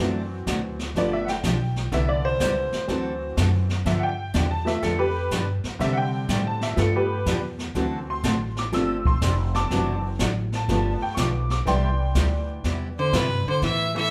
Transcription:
0.00 upright bass F#2, steel-string acoustic guitar C3 F#3 A3 D4 F#4, honky-tonk piano E3 F#3 C4
0.46 upright bass D2, steel-string acoustic guitar C3 F#3 A3 D4 F#4, kick, snare, hi-hat pedal
0.79 snare
0.95 upright bass G1, steel-string acoustic guitar D3 F3 B3 D4 G4, honky-tonk piano F3 A3 B3 D5, brush sweep, kick, snare
1.13 honky-tonk piano E5
1.25 honky-tonk piano F#5, snare
1.29 honky-tonk piano G5
1.43 upright bass B1, steel-string acoustic guitar D3 F3 B3 D4 G4, kick, snare, hi-hat pedal
1.76 snare
1.92 upright bass C2, steel-string acoustic guitar C3 G3 B3 E4 G4, honky-tonk piano D3 E3 B3 E5, brush sweep, kick, snare
2.09 honky-tonk piano D5
2.25 honky-tonk piano C5
2.40 upright bass C#2, steel-string acoustic guitar C3 G3 B3 E4 G4, honky-tonk piano C5, kick, snare, hi-hat pedal
2.72 muted upright bass stroke, snare
2.88 upright bass D2, steel-string acoustic guitar D3 A3 C4 F#4 A4, honky-tonk piano E3 F#3 C4, brush sweep, kick, snare
3.37 upright bass F#2, steel-string acoustic guitar D3 A3 C4 F#4 A4, kick, snare, hi-hat pedal
3.69 snare
3.85 upright bass G2, steel-string acoustic guitar D3 F3 B3 D4 G4, honky-tonk piano E5, brush sweep, kick, snare
3.99 honky-tonk piano F#5
4.03 honky-tonk piano G5
4.34 upright bass E2, steel-string acoustic guitar D3 F3 B3 D4 G4, kick, snare, hi-hat pedal
4.51 honky-tonk piano A5
4.65 honky-tonk piano F3 A3 B3 E5, snare
4.82 upright bass F2, steel-string acoustic guitar D3 F3 B3 D4 G4, honky-tonk piano A4, brush sweep, kick, snare
4.99 honky-tonk piano G4 B4
5.31 upright bass G2, steel-string acoustic guitar D3 F3 B3 D4 G4, kick, snare, hi-hat pedal
5.64 muted upright bass stroke, snare
5.79 upright bass C3, steel-string acoustic guitar C3 G3 C4 D4 G4, honky-tonk piano D3 G3 C4 E5, brush sweep, kick, snare
5.93 honky-tonk piano F#5
5.97 honky-tonk piano G5
6.28 upright bass A2, steel-string acoustic guitar C3 G3 C4 D4 G4, kick, snare, hi-hat pedal
6.47 honky-tonk piano A5
6.61 honky-tonk piano E5, snare
6.76 upright bass G2, steel-string acoustic guitar D3 F3 B3 D4 G4, honky-tonk piano F3 A3 B3 A4, brush sweep, kick, snare
6.96 honky-tonk piano G4 B4
7.26 upright bass E2, steel-string acoustic guitar D3 F3 B3 D4 G4, kick, snare, hi-hat pedal
7.59 snare
7.75 upright bass D2, steel-string acoustic guitar D3 A3 C4 F#4 A4, honky-tonk piano E3 F#3 C4, brush sweep, kick, snare
8.10 honky-tonk piano C6
8.24 upright bass A1, steel-string acoustic guitar D3 A3 C4 F#4 A4, kick, snare, hi-hat pedal
8.57 honky-tonk piano D6, snare
8.72 upright bass G1, steel-string acoustic guitar C3 F3 C4 D4 G4, honky-tonk piano F3 A3 C4 E6, brush sweep, kick, snare
9.05 honky-tonk piano C6, kick
9.21 upright bass F1, steel-string acoustic guitar C3 F3 C4 D4 G4, kick, snare, hi-hat pedal
9.54 honky-tonk piano A5 D6, snare
9.70 upright bass F#1, steel-string acoustic guitar C3 F#3 A3 D4 F#4, honky-tonk piano E3 F#3 C4, brush sweep, kick, snare
10.19 upright bass A1, steel-string acoustic guitar C3 F#3 A3 D4 F#4, kick, snare, hi-hat pedal
10.52 honky-tonk piano A5, snare
10.68 upright bass G1, steel-string acoustic guitar D3 F3 B3 D4 G4, honky-tonk piano F3 A3 B3, brush sweep, kick, snare
11.01 honky-tonk piano G5, muted upright bass stroke
11.15 upright bass B1, steel-string acoustic guitar D3 F3 B3 D4 G4, honky-tonk piano C#6, kick, snare, hi-hat pedal
11.19 honky-tonk piano D6
11.50 honky-tonk piano D6, snare
11.65 upright bass C2, steel-string acoustic guitar C3 G3 B3 E4 G4, honky-tonk piano E3 B3 D4 G5 C6, brush sweep, kick, snare
12.15 upright bass D2, steel-string acoustic guitar C3 G3 B3 E4 G4, kick, snare, hi-hat pedal
12.64 upright bass E2, steel-string acoustic guitar C3 G3 B3 E4 G4, brush sweep, kick, snare
12.99 hollow-body jazz guitar D3, fiddle C5
13.13 upright bass G2, steel-string acoustic guitar C3 G3 B3 E4 G4, hollow-body jazz guitar C3, fiddle B4, kick, snare, hi-hat pedal
13.46 hollow-body jazz guitar D3, fiddle C5, muted upright bass stroke
13.62 upright bass A2, hollow-body jazz guitar E3, steel-string acoustic guitar A3 B3 E4 B4, fiddle E5, brush sweep, kick, snare
13.95 honky-tonk piano E3 A3 B3 E4 A4, hollow-body jazz guitar E3, fiddle E5

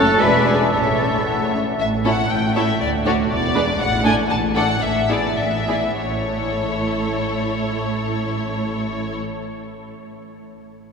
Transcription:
Already playing: double bass section F#1, viola section A3, cello section A4, violin section C#5 A5, clarinet C#5, oboe F#5, flute section A5
0.19 double bass section E1, viola section G#3, cello section B4, violin section D5 E5, clarinet D5, oboe E5, flute section G#5
0.45 french horn section G#3 D4, cello section G#4
0.73 double bass section A1, viola section A3, cello section A4, violin section C#5 E5, clarinet C#5, oboe E5, flute section A5
1.01 french horn section A3 C#4
1.26 clarinet F#5
1.53 french horn section A3 C#4, clarinet E5
1.79 double bass section A1, cello section A2, violin section E5
2.05 viola section C#4 E4, violin section A4 C#5 F#5
2.30 double bass section A1, cello section A2, violin section G5
2.56 viola section A3 E4, violin section A4 C#5 E5
2.81 cello section D2, double bass section D2, violin section D5
3.05 viola section A3 D4, violin section F#4 C#5 D5
3.30 double bass section E1, cello section E2, violin section D5
3.55 viola section G#3 D4, violin section B4 D5
3.79 double bass section A1, cello section A2, violin section F#5
4.04 viola section A3 D4, violin section A4 D5 G#5
4.30 double bass section A1, cello section A2, violin section A5
4.55 viola section A3 D4, violin section A4 D5 F#5
4.82 double bass section A1, cello section A2, violin section E5
5.09 viola section B3 E4, violin section G#4 D5
5.38 double bass section A1, cello section A2, violin section E5
5.68 viola section B3 E4, violin section G#4 D5
5.98 double bass section A1, cello section A2, viola section A3 E4, violin section A4 C#5

